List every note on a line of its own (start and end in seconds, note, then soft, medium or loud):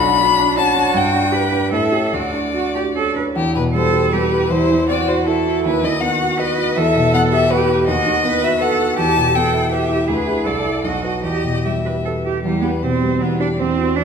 0.00 0.92 B1 medium
0.00 0.32 D4 medium
0.00 0.20 F#4 medium
0.00 0.57 B5 loud
0.21 0.60 D4 medium
0.21 0.51 F#4 soft
0.39 0.69 D4 soft
0.58 0.77 C#4 soft
0.58 1.34 F#4 medium
0.58 0.98 A5 medium
0.76 0.95 D4 soft
0.94 1.69 G2 medium
0.94 1.72 G5 medium
1.13 1.44 D4 soft
1.32 1.63 G4 soft
1.32 1.71 B4 medium
1.52 1.72 D4 soft
1.71 2.11 A2 medium
1.71 2.15 A4 medium
1.71 2.15 E5 medium
1.92 2.11 C#4 soft
1.92 2.11 G4 soft
2.13 3.33 D2 soft
2.13 2.51 F#4 soft
2.13 3.17 D5 medium
2.34 2.67 D4 soft
2.54 2.87 F#4 soft
2.54 2.74 F#4 medium
2.75 3.08 D4 soft
2.75 2.83 G4 medium
2.96 3.16 C#4 soft
2.96 3.15 A4 medium
3.16 3.36 D4 soft
3.16 3.24 B4 medium
3.36 4.47 E2 medium
3.36 3.54 G4 medium
3.56 3.86 B2 soft
3.56 3.63 B4 medium
3.74 4.05 G3 soft
3.74 4.14 A4 medium
3.74 4.11 C5 medium
3.93 4.24 G4 soft
4.12 4.43 G3 soft
4.12 4.51 G4 medium
4.12 4.52 B4 medium
4.32 4.51 G4 soft
4.50 5.62 E2 medium
4.50 4.88 E4 medium
4.50 4.88 C5 medium
4.71 5.01 E3 soft
4.88 5.19 C4 soft
4.88 5.28 F#4 medium
4.88 5.10 D5 medium
5.08 5.39 F#4 soft
5.08 5.25 C5 medium
5.26 6.02 E4 medium
5.26 5.64 A4 medium
5.26 5.58 A4 soft
5.47 5.65 F#4 soft
5.64 6.74 D#2 medium
5.64 5.86 B4 medium
5.82 6.13 D#3 soft
5.82 6.03 D#5 medium
6.01 6.32 B3 soft
6.01 6.40 F#4 medium
6.01 6.41 F#5 medium
6.21 6.51 F#4 soft
6.39 6.79 B4 medium
6.39 6.69 B4 soft
6.39 6.78 D#5 medium
6.58 6.77 F#4 soft
6.77 7.84 E2 medium
6.77 7.51 A4 medium
6.77 7.13 E5 medium
6.95 7.25 B2 soft
7.14 7.43 B3 soft
7.14 7.21 F#5 medium
7.32 7.62 G4 soft
7.32 7.52 E5 medium
7.50 7.87 G4 medium
7.50 7.86 B4 medium
7.50 7.80 B4 medium
7.70 7.88 G4 soft
7.87 8.95 D#2 medium
7.87 8.24 F#4 medium
7.87 8.45 D#5 medium
8.06 8.36 D#3 soft
8.25 8.54 B3 soft
8.25 8.60 B4 medium
8.44 8.73 F#4 soft
8.44 8.63 E5 medium
8.60 8.96 A4 medium
8.60 8.91 B4 soft
8.60 8.98 F#5 medium
8.79 8.98 F#4 soft
8.97 10.05 E2 medium
8.97 9.34 G4 medium
8.97 9.37 A5 medium
9.17 9.46 B2 soft
9.34 9.65 B3 soft
9.34 9.71 A4 medium
9.34 9.74 G5 medium
9.53 9.83 E4 soft
9.72 10.09 G4 medium
9.72 10.01 B4 soft
9.72 10.09 E5 medium
9.89 10.08 E4 soft
10.08 10.44 D2 soft
10.08 10.46 G#4 soft
10.08 10.47 B4 medium
10.27 10.43 E4 soft
10.27 10.44 G#4 soft
10.44 10.83 C2 soft
10.44 10.83 A4 medium
10.44 10.86 D5 medium
10.65 10.82 E4 soft
10.65 10.82 A4 soft
10.83 11.23 B1 soft
10.83 11.23 F#4 soft
10.83 11.23 D#5 medium
11.03 11.21 F#4 soft
11.03 11.22 B4 soft
11.23 12.41 E2 soft
11.23 11.60 G4 soft
11.23 11.67 D#5 medium
11.44 11.77 B2 soft
11.64 11.98 G3 soft
11.64 11.72 G4 soft
11.64 12.25 E5 soft
11.85 12.17 G4 soft
11.85 11.93 B4 soft
12.05 12.13 A4 soft
12.05 12.38 B4 soft
12.25 12.42 G4 soft
12.25 12.45 G4 soft
12.43 13.19 E2 soft
12.43 12.61 G3 medium
12.43 12.65 G4 medium
12.61 12.69 B3 medium
12.61 12.95 G4 soft
12.61 12.84 B4 medium
12.82 13.14 B2 soft
12.82 13.23 C4 medium
12.82 13.20 C5 soft
13.03 13.33 G3 soft
13.21 13.58 E2 soft
13.21 13.39 B3 medium
13.21 13.42 B4 soft
13.40 13.48 D4 medium
13.40 13.60 G4 soft
13.40 13.61 D5 medium
13.58 14.04 E2 soft
13.58 13.98 C4 medium
13.58 13.99 C5 medium
13.78 14.04 F#4 soft
13.96 14.04 E3 soft
13.96 14.04 D4 medium
13.96 14.04 D5 medium